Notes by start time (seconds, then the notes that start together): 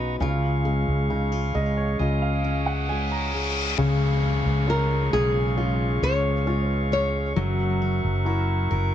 Already playing: B1 C#3 F#3 B3 C#4 D#4 F#4 B4 D#5 A#5 C#6
0.20 C#2 C#3 F4 G#4 C#5 F5 C#6
0.65 G#3 C#4
0.88 C#2
1.10 C#3 D#4
1.32 F4
1.55 C#2 G#3 G#4 D#5
1.77 C#5
1.99 C#2 C#3 F4 D#5 D#6, reverse cymbal
2.22 F5
2.44 C#4
2.66 F#5
2.89 G#3 F4 G#5
3.12 A#5
3.34 G#4
3.78 C#2 C#3 G#4 C#5 F5 C#6, downlifter
4.24 C#4
4.46 C#2
4.67 G#3 C#4 F4 A#4
5.13 B1 G#4
5.57 G#3 C#4 F4
6.02 C#2 C#4 C#5
6.46 G#3 C#4 F4
6.69 B4
6.92 C#4 C#5
7.36 F#1 F#3 A#4 E5 F#5
7.82 C#4
8.04 F#1
8.25 E4 F#4 A#4
8.71 F#1 A#4